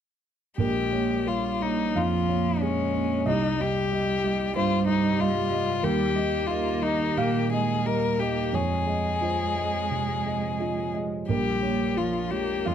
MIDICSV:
0, 0, Header, 1, 4, 480
1, 0, Start_track
1, 0, Tempo, 683371
1, 412, Time_signature, 4, 2, 24, 8
1, 1374, Tempo, 646552
1, 4734, Tempo, 686499
1, 9114, End_track
2, 0, Start_track
2, 0, Title_t, "Felt piano"
2, 0, Program_c, 0, 0
2, 408, Note_on_c, 0, 34, 38
2, 418, Note_on_c, 0, 70, 47
2, 556, Control_c, 0, 64, 127
2, 645, Note_on_c, 0, 58, 28
2, 650, Note_on_c, 0, 73, 31
2, 861, Note_off_c, 0, 58, 0
2, 864, Note_off_c, 0, 73, 0
2, 872, Note_off_c, 0, 70, 0
2, 882, Note_on_c, 0, 70, 30
2, 886, Note_on_c, 0, 73, 30
2, 1104, Note_off_c, 0, 70, 0
2, 1106, Note_off_c, 0, 73, 0
2, 1129, Note_on_c, 0, 58, 29
2, 1131, Note_on_c, 0, 73, 31
2, 1344, Note_off_c, 0, 34, 0
2, 1348, Note_off_c, 0, 58, 0
2, 1350, Note_off_c, 0, 73, 0
2, 1371, Note_on_c, 0, 41, 30
2, 1374, Note_on_c, 0, 77, 54
2, 1617, Note_on_c, 0, 58, 31
2, 1621, Note_on_c, 0, 73, 32
2, 1763, Note_off_c, 0, 41, 0
2, 1835, Note_off_c, 0, 58, 0
2, 1837, Note_off_c, 0, 73, 0
2, 1866, Note_on_c, 0, 68, 30
2, 1867, Note_on_c, 0, 73, 33
2, 2081, Note_off_c, 0, 68, 0
2, 2082, Note_off_c, 0, 73, 0
2, 2100, Note_on_c, 0, 58, 31
2, 2106, Note_on_c, 0, 73, 35
2, 2315, Note_off_c, 0, 77, 0
2, 2319, Note_off_c, 0, 58, 0
2, 2322, Note_off_c, 0, 73, 0
2, 2339, Note_on_c, 0, 75, 62
2, 2346, Note_on_c, 0, 36, 42
2, 2359, Control_c, 0, 64, 0
2, 2456, Control_c, 0, 64, 127
2, 2582, Note_off_c, 0, 75, 0
2, 2590, Note_on_c, 0, 55, 34
2, 2593, Note_on_c, 0, 75, 37
2, 2806, Note_off_c, 0, 55, 0
2, 2808, Note_off_c, 0, 75, 0
2, 2829, Note_on_c, 0, 67, 35
2, 2836, Note_on_c, 0, 75, 34
2, 3045, Note_off_c, 0, 67, 0
2, 3048, Note_off_c, 0, 75, 0
2, 3069, Note_on_c, 0, 55, 38
2, 3074, Note_on_c, 0, 75, 41
2, 3277, Note_off_c, 0, 36, 0
2, 3282, Note_off_c, 0, 55, 0
2, 3284, Note_off_c, 0, 75, 0
2, 3307, Note_on_c, 0, 72, 62
2, 3309, Note_on_c, 0, 43, 38
2, 3539, Note_on_c, 0, 75, 42
2, 3540, Note_on_c, 0, 55, 41
2, 3686, Note_off_c, 0, 43, 0
2, 3753, Note_off_c, 0, 55, 0
2, 3753, Note_off_c, 0, 75, 0
2, 3777, Note_on_c, 0, 67, 37
2, 3778, Note_on_c, 0, 75, 44
2, 3990, Note_off_c, 0, 67, 0
2, 3991, Note_off_c, 0, 75, 0
2, 4011, Note_on_c, 0, 55, 35
2, 4019, Note_on_c, 0, 75, 42
2, 4224, Note_off_c, 0, 72, 0
2, 4227, Note_off_c, 0, 55, 0
2, 4231, Note_off_c, 0, 75, 0
2, 4248, Note_on_c, 0, 39, 52
2, 4251, Note_on_c, 0, 70, 67
2, 4267, Control_c, 0, 64, 0
2, 4399, Control_c, 0, 64, 127
2, 4493, Note_on_c, 0, 55, 40
2, 4494, Note_on_c, 0, 75, 42
2, 4710, Note_off_c, 0, 55, 0
2, 4710, Note_off_c, 0, 75, 0
2, 4731, Note_on_c, 0, 67, 35
2, 4733, Note_on_c, 0, 75, 37
2, 4947, Note_off_c, 0, 67, 0
2, 4948, Note_off_c, 0, 75, 0
2, 4971, Note_on_c, 0, 55, 38
2, 4971, Note_on_c, 0, 75, 39
2, 5187, Note_off_c, 0, 39, 0
2, 5189, Note_off_c, 0, 70, 0
2, 5192, Note_off_c, 0, 55, 0
2, 5192, Note_off_c, 0, 75, 0
2, 5217, Note_on_c, 0, 46, 40
2, 5218, Note_on_c, 0, 77, 71
2, 5449, Note_on_c, 0, 58, 36
2, 5453, Note_on_c, 0, 75, 36
2, 5601, Note_off_c, 0, 46, 0
2, 5667, Note_off_c, 0, 58, 0
2, 5668, Note_off_c, 0, 77, 0
2, 5669, Note_off_c, 0, 75, 0
2, 5692, Note_on_c, 0, 67, 32
2, 5694, Note_on_c, 0, 75, 36
2, 5907, Note_off_c, 0, 67, 0
2, 5908, Note_off_c, 0, 75, 0
2, 5929, Note_on_c, 0, 55, 30
2, 5934, Note_on_c, 0, 75, 32
2, 6144, Note_off_c, 0, 55, 0
2, 6147, Note_off_c, 0, 75, 0
2, 6163, Note_on_c, 0, 41, 37
2, 6172, Note_on_c, 0, 73, 53
2, 6184, Control_c, 0, 64, 0
2, 6282, Control_c, 0, 64, 127
2, 6398, Note_on_c, 0, 56, 29
2, 6403, Note_on_c, 0, 75, 31
2, 6621, Note_off_c, 0, 56, 0
2, 6623, Note_off_c, 0, 75, 0
2, 6624, Note_off_c, 0, 73, 0
2, 6642, Note_on_c, 0, 65, 27
2, 6642, Note_on_c, 0, 75, 30
2, 6657, Note_on_c, 0, 72, 37
2, 6866, Note_off_c, 0, 65, 0
2, 6867, Note_off_c, 0, 75, 0
2, 6884, Note_on_c, 0, 56, 28
2, 6886, Note_on_c, 0, 75, 30
2, 7107, Note_off_c, 0, 41, 0
2, 7108, Note_off_c, 0, 56, 0
2, 7109, Note_off_c, 0, 75, 0
2, 7130, Note_on_c, 0, 48, 27
2, 7373, Note_on_c, 0, 56, 25
2, 7374, Note_on_c, 0, 75, 28
2, 7516, Note_off_c, 0, 48, 0
2, 7589, Note_off_c, 0, 56, 0
2, 7590, Note_off_c, 0, 75, 0
2, 7591, Note_off_c, 0, 72, 0
2, 7613, Note_on_c, 0, 65, 28
2, 7616, Note_on_c, 0, 75, 29
2, 7829, Note_off_c, 0, 65, 0
2, 7831, Note_off_c, 0, 75, 0
2, 7851, Note_on_c, 0, 56, 24
2, 7852, Note_on_c, 0, 75, 26
2, 8068, Note_off_c, 0, 56, 0
2, 8068, Note_off_c, 0, 75, 0
2, 8093, Note_on_c, 0, 34, 38
2, 8101, Note_on_c, 0, 70, 50
2, 8106, Control_c, 0, 64, 0
2, 8208, Control_c, 0, 64, 127
2, 8330, Note_on_c, 0, 58, 27
2, 8331, Note_on_c, 0, 73, 31
2, 8541, Note_off_c, 0, 58, 0
2, 8541, Note_off_c, 0, 73, 0
2, 8566, Note_on_c, 0, 65, 28
2, 8566, Note_on_c, 0, 73, 30
2, 8783, Note_off_c, 0, 65, 0
2, 8783, Note_off_c, 0, 73, 0
2, 8805, Note_on_c, 0, 56, 28
2, 8808, Note_on_c, 0, 73, 32
2, 9024, Note_off_c, 0, 34, 0
2, 9027, Note_off_c, 0, 56, 0
2, 9028, Note_off_c, 0, 70, 0
2, 9029, Note_off_c, 0, 73, 0
2, 9050, Note_on_c, 0, 77, 53
2, 9052, Note_on_c, 0, 41, 30
2, 9114, Note_off_c, 0, 41, 0
2, 9114, Note_off_c, 0, 77, 0
2, 9114, End_track
3, 0, Start_track
3, 0, Title_t, "Violin"
3, 0, Program_c, 1, 40
3, 408, Note_on_c, 1, 67, 51
3, 892, Note_on_c, 1, 65, 38
3, 902, Note_off_c, 1, 67, 0
3, 1137, Note_on_c, 1, 63, 39
3, 1148, Note_off_c, 1, 65, 0
3, 1385, Note_on_c, 1, 65, 40
3, 1396, Note_off_c, 1, 63, 0
3, 1867, Note_on_c, 1, 61, 42
3, 1878, Note_off_c, 1, 65, 0
3, 2348, Note_off_c, 1, 61, 0
3, 2358, Note_on_c, 1, 63, 45
3, 2597, Note_on_c, 1, 67, 54
3, 2608, Note_off_c, 1, 63, 0
3, 3301, Note_off_c, 1, 67, 0
3, 3306, Note_on_c, 1, 65, 50
3, 3533, Note_off_c, 1, 65, 0
3, 3538, Note_on_c, 1, 63, 47
3, 3784, Note_on_c, 1, 65, 55
3, 3795, Note_off_c, 1, 63, 0
3, 4260, Note_on_c, 1, 67, 60
3, 4271, Note_off_c, 1, 65, 0
3, 4729, Note_on_c, 1, 65, 54
3, 4740, Note_off_c, 1, 67, 0
3, 4973, Note_on_c, 1, 63, 53
3, 4983, Note_off_c, 1, 65, 0
3, 5218, Note_on_c, 1, 67, 50
3, 5229, Note_off_c, 1, 63, 0
3, 5455, Note_off_c, 1, 67, 0
3, 5459, Note_on_c, 1, 68, 45
3, 5698, Note_on_c, 1, 70, 49
3, 5709, Note_off_c, 1, 68, 0
3, 5935, Note_on_c, 1, 67, 45
3, 5945, Note_off_c, 1, 70, 0
3, 6175, Note_on_c, 1, 68, 45
3, 6185, Note_off_c, 1, 67, 0
3, 7857, Note_off_c, 1, 68, 0
3, 8097, Note_on_c, 1, 67, 47
3, 8574, Note_on_c, 1, 65, 37
3, 8584, Note_off_c, 1, 67, 0
3, 8805, Note_on_c, 1, 67, 41
3, 8815, Note_off_c, 1, 65, 0
3, 9057, Note_on_c, 1, 65, 41
3, 9067, Note_off_c, 1, 67, 0
3, 9114, Note_off_c, 1, 65, 0
3, 9114, End_track
4, 0, Start_track
4, 0, Title_t, "Cello"
4, 0, Program_c, 2, 42
4, 405, Note_on_c, 2, 56, 37
4, 881, Note_on_c, 2, 55, 36
4, 892, Note_off_c, 2, 56, 0
4, 1372, Note_on_c, 2, 53, 36
4, 1383, Note_off_c, 2, 55, 0
4, 1861, Note_on_c, 2, 56, 41
4, 1872, Note_off_c, 2, 53, 0
4, 2332, Note_off_c, 2, 56, 0
4, 2337, Note_on_c, 2, 55, 48
4, 2576, Note_off_c, 2, 55, 0
4, 2580, Note_on_c, 2, 55, 46
4, 3287, Note_off_c, 2, 55, 0
4, 3298, Note_on_c, 2, 55, 50
4, 4230, Note_off_c, 2, 55, 0
4, 4242, Note_on_c, 2, 55, 55
4, 4486, Note_on_c, 2, 58, 52
4, 4498, Note_off_c, 2, 55, 0
4, 5211, Note_off_c, 2, 58, 0
4, 5215, Note_on_c, 2, 58, 48
4, 5448, Note_off_c, 2, 58, 0
4, 5452, Note_on_c, 2, 56, 44
4, 5690, Note_on_c, 2, 55, 46
4, 5701, Note_off_c, 2, 56, 0
4, 5927, Note_on_c, 2, 58, 44
4, 5937, Note_off_c, 2, 55, 0
4, 6176, Note_on_c, 2, 56, 40
4, 6187, Note_off_c, 2, 58, 0
4, 7953, Note_off_c, 2, 56, 0
4, 8098, Note_on_c, 2, 55, 37
4, 8565, Note_on_c, 2, 53, 41
4, 8575, Note_off_c, 2, 55, 0
4, 8804, Note_on_c, 2, 58, 40
4, 8814, Note_off_c, 2, 53, 0
4, 9056, Note_on_c, 2, 56, 39
4, 9067, Note_off_c, 2, 58, 0
4, 9114, Note_off_c, 2, 56, 0
4, 9114, End_track
0, 0, End_of_file